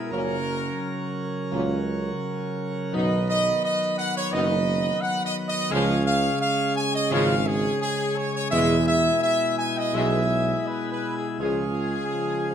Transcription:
Already playing: B2 G#3 E4 G#4 A#4
0.10 F#1 A#2 C#3 F#3 A#3 C#4 A#4
1.51 C#2 A#2 F#3 A#3 C#4
2.93 B1 F#2 D#3 F#3 B3 D#4 B4 D#5
3.29 D#5
3.64 D#5
3.98 F#5
4.17 C#5
4.31 F#1 F#2 F#3 B3 D#4 D#5
5.02 F#5
5.25 D#5
5.48 D#5
5.70 C#2 C#3 F3 G#3 C#4 G#4 F5
6.06 F5
6.41 F5
6.76 G#5
6.95 D#5
7.11 G#1 C#3 F3 G#3 G#4 F5
7.47 G#4
7.82 G#4
8.17 C#5
8.35 C#5
8.50 E2 B2 G#3 E4 G#4 E5
8.87 E5
9.23 E5
9.58 G#5
9.78 D#5
9.93 B1 B2 G#3 G#4 E5
10.67 B4
10.92 B4
11.17 G#4
11.38 C#2 C#3 F3 G#3 F4 G#4
12.12 F3
12.49 F3

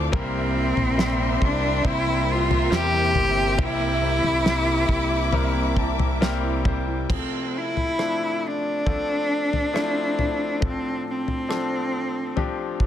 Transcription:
Already playing: E3 F3 A3 C4 D4 A4 D6
0.12 C2 G2 C3 G3 A#3 C4 E4 G4 A#4 E5 C6, kick, floor tom
0.34 A#3
0.56 E4
0.77 A#1 A#3, floor tom
0.97 G3 A#3 C4 E4 G4, snare
1.21 E4
1.42 C2 D4 G4, kick
1.64 E4
1.84 C2 C3 G3 A#3 C4 E4 G4 C5 E5, kick, floor tom
2.06 A#3
2.31 F4
2.50 A#3, floor tom
2.71 E2 G3 A#3 C4 E4 G4, snare
2.93 E4
3.15 G1 G4, floor tom
3.36 E4
3.58 C2 G2 C3 G3 A#3 C4 E4 G4 D6, kick, floor tom
3.62 E4
3.79 A#3
4.01 E4
4.23 C2 A#3, floor tom
4.44 G3 A#3 C4 E4 G4, snare
4.66 E4
4.89 C2 G4, kick
5.11 E4
5.32 C3 G3 A#3 C4 E4 G4 A#4, floor tom
5.55 A#3
5.76 E4 A5, kick
5.99 A#3, floor tom
6.21 G3 A#3 C4 E4 G4 A#4 G5, snare
6.43 E4
6.65 G4 C5, kick, floor tom
6.87 E4
7.09 C3 F3 A3 C4 G#4, kick, floor tom, crash
7.17 A4
7.58 E4
7.77 floor tom
7.98 F3 A3 C4 D4, cross-stick
8.47 D4
8.86 F3 A3 C4 A4, kick, floor tom
9.53 floor tom
9.73 F3 A3 C4 E4, cross-stick
10.19 floor tom
10.61 A2 F3 C4 D4 A4, kick, floor tom
10.67 C4
11.10 C4
11.28 floor tom
11.49 F3 C4 D4 A4, cross-stick
12.36 F3 C4 D4 G4, floor tom
12.80 kick

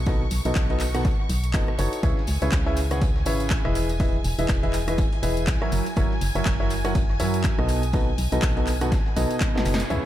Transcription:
Already playing: B1 C#6
0.06 B2 D#4 F#4 A4 B4 D#5, kick, closed hi-hat, open hi-hat, tambourine
0.31 B1, closed hi-hat, open hi-hat, tambourine
0.45 B1 B2 D#4 F#4 A4 B4 D#5, closed hi-hat, tambourine
0.55 B1, kick, snare, clap, closed hi-hat, tambourine
0.70 B2 D#4 F#4 A4 B4 D#5, closed hi-hat
0.80 clap, closed hi-hat, open hi-hat, tambourine
0.94 B2 D#4 F#4 A4 B4 F#5, cross-stick, snare, closed hi-hat, tambourine
1.05 kick, snare, closed hi-hat, tambourine
1.29 B1, closed hi-hat, open hi-hat, tambourine
1.44 closed hi-hat, tambourine
1.54 F#1 B2 D#4 F#4 A4 B4 D#5, kick, snare, clap, closed hi-hat, tambourine
1.68 cross-stick
1.78 F#1 D#4 F#4 A4 B4 C#5, closed hi-hat, open hi-hat, tambourine
1.93 closed hi-hat, tambourine
2.03 C#2 C#3 E4 G#4 B4 C#5 E5 G#5, kick, closed hi-hat, tambourine
2.17 snare
2.27 C#2, snare, closed hi-hat, open hi-hat, tambourine
2.42 C#2 C#3 E4 G#4 B4 C#5 E5, closed hi-hat, tambourine
2.52 C#2, kick, snare, clap, closed hi-hat, tambourine
2.66 C#3 E4 G#4 B4 C#5 E5, snare
2.76 closed hi-hat, open hi-hat, tambourine
2.91 C#3 E4 G#4 B4 C#5 F#5, cross-stick, closed hi-hat, tambourine
3.01 kick, closed hi-hat, tambourine
3.16 snare
3.26 G#1 C#3 E4 G#4 B4 C#5 E5, closed hi-hat, open hi-hat, tambourine
3.40 closed hi-hat, tambourine
3.50 kick, snare, clap, closed hi-hat, tambourine
3.65 E1 E3 E4 G#4 B4 D#5 E5, cross-stick
3.75 closed hi-hat, open hi-hat, tambourine
3.89 closed hi-hat, tambourine
4.00 E3 E4 G#4 B4 D#5 E5, kick, closed hi-hat, open hi-hat, tambourine
4.24 E1, closed hi-hat, open hi-hat, tambourine
4.39 E1 E3 E4 G#4 B4 D#5 E5, closed hi-hat, tambourine
4.48 E1, kick, snare, clap, closed hi-hat, tambourine
4.63 E3 E4 G#4 B4 D#5 E5, closed hi-hat
4.73 clap, closed hi-hat, open hi-hat, tambourine
4.87 E3 E4 G#4 B4 D#5 E5, cross-stick, closed hi-hat, tambourine
4.98 kick, closed hi-hat, tambourine
5.13 closed hi-hat
5.23 E1 E3 E4 G#4 B4 D#5 E5, closed hi-hat, open hi-hat, tambourine
5.37 closed hi-hat, tambourine
5.47 B1, kick, snare, clap, closed hi-hat
5.62 F#3 E4 F#4 A#4 C#5 E5, cross-stick
5.72 F#1, closed hi-hat, open hi-hat, tambourine
5.86 closed hi-hat, tambourine
5.96 F#1 F#3 E4 F#4 A#4 C#5 E5, kick, closed hi-hat, tambourine
6.11 snare
6.21 F#1, snare, closed hi-hat, open hi-hat, tambourine
6.35 F#1 F#3 E4 F#4 A#4 C#5 E5, closed hi-hat, tambourine
6.45 F#1, kick, snare, clap, closed hi-hat
6.60 F#3 E4 F#4 A#4 C#5 E5, snare
6.70 snare, closed hi-hat, open hi-hat, tambourine
6.84 F#3 E4 F#4 A#4 C#5 F#5, cross-stick, closed hi-hat, tambourine
6.95 kick, closed hi-hat, tambourine
7.09 snare
7.20 F#2 F#3 E4 F#4 A#4 C#5 E5, closed hi-hat, open hi-hat, tambourine
7.34 closed hi-hat, tambourine
7.44 kick, snare, clap, closed hi-hat, tambourine
7.58 B1 B2 D#4 F#4 A4 B4 D#5, cross-stick
7.68 closed hi-hat, open hi-hat, tambourine
7.83 closed hi-hat, tambourine
7.93 B2 D#4 F#4 A4 B4 D#5, kick, closed hi-hat, open hi-hat, tambourine
8.18 B1, closed hi-hat, open hi-hat, tambourine
8.32 B1 B2 D#4 F#4 A4 B4 D#5, closed hi-hat, tambourine
8.42 B1, kick, snare, clap, closed hi-hat, tambourine
8.57 B2 D#4 F#4 A4 B4 D#5, closed hi-hat
8.67 clap, closed hi-hat, open hi-hat, tambourine
8.81 B2 D#4 F#4 A4 B4 F#5, cross-stick, closed hi-hat, tambourine
8.92 kick, snare, closed hi-hat, tambourine
9.06 snare
9.16 B1 B2 D#4 F#4 A4 B4 D#5, snare, closed hi-hat, open hi-hat, tambourine
9.31 closed hi-hat, tambourine
9.40 kick, snare, clap, closed hi-hat, tambourine
9.55 B2 D#4 F#4 A4 B4 D#5, snare
9.58 snare
9.65 F#1, snare, closed hi-hat, open hi-hat, tambourine
9.74 snare
9.79 snare, closed hi-hat, tambourine
9.90 C#2 C#3 E4 G#4 B4 C#5 E5 F#5, closed hi-hat, tambourine, impact

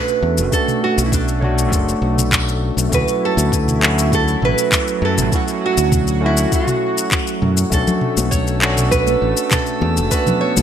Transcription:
Already playing: A3 C#4 D4 F#4 B4
0.08 shaker
0.22 E2
0.38 F#1, shaker
0.50 A3 C#4 D4 A4, kick, shaker
0.55 F#4
0.68 mid tom, shaker
0.84 F#4
0.98 B1, shaker
1.06 E4
1.12 D4, kick, shaker
1.28 shaker
1.40 A3 D4 C#5, mid tom
1.44 F#4
1.58 shaker
1.72 F#1, kick, shaker
1.89 shaker
2.02 B1
2.18 mid tom, shaker
2.32 kick, clap, shaker
2.49 shaker
2.77 B1, shaker
2.89 D2 F#3 A3 C#4 E4, kick, mid tom, shaker
2.94 F#4 B4
3.08 shaker
3.25 A4
3.37 D2, shaker
3.52 kick, shaker
3.68 mid tom, shaker
3.80 A3 C#4 E4, clap
3.85 F#4
3.99 shaker
4.12 A4, kick, shaker
4.28 shaker
4.42 A1 B4, mid tom
4.58 shaker
4.72 kick, clap, shaker
4.88 shaker
5.02 F#2 A4
5.18 A1, mid tom, shaker
5.29 A3 C#4 E4 F#4, kick, shaker
5.35 F#4
5.48 shaker
5.66 F#4
5.77 D2, shaker
5.92 kick, mid tom, shaker
6.07 shaker
6.20 A3 C#4 E4
6.25 E4 F#4
6.37 shaker
6.52 F#4, kick, shaker
6.67 mid tom, shaker
6.98 shaker
7.12 kick, clap, shaker
7.27 shaker
7.42 F#2, mid tom
7.57 shaker
7.70 B1 A3 C#4 D4 A4 A5, kick, shaker
7.75 F#4
7.87 low conga, shaker
8.01 mid tom
8.17 B1, high conga, shaker
8.31 C#5, kick, shaker
8.47 shaker
8.60 A3 C#4 D4, clap
8.65 F#4
8.77 mid tom, shaker
8.91 B4, kick, shaker
9.07 high conga, shaker
9.22 A1
9.37 shaker
9.51 A4, kick, clap, mid tom, shaker
9.66 shaker
9.81 E2, high conga
9.97 F#1, shaker
10.10 A3 B3 C#4 D4 B4, kick, shaker
10.14 F#4
10.26 mid tom, low conga, shaker
10.41 C#5
10.57 B1, high conga, shaker

